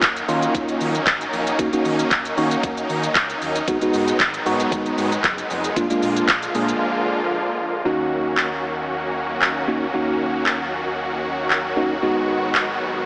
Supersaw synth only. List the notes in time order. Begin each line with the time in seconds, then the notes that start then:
Already playing: D#3 F#3 A#3 C#4 D#4
3.68 D#3 F#3 G#3 B3
5.77 D3 F3 A#3 F4
7.85 D#3 F#3 A#3 C#4 F#4
12.03 G#3 B3